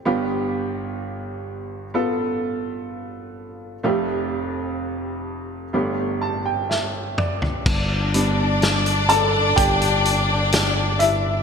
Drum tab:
CC |----------------|----------------|x---------------|
HH |----------------|----------------|--x-xxx-xxx-x-x-|
SD |----------------|------------o---|----o-------o---|
T2 |----------------|--------------o-|----------------|
FT |----------------|---------------o|----------------|
BD |----------------|----------------|o-------o-------|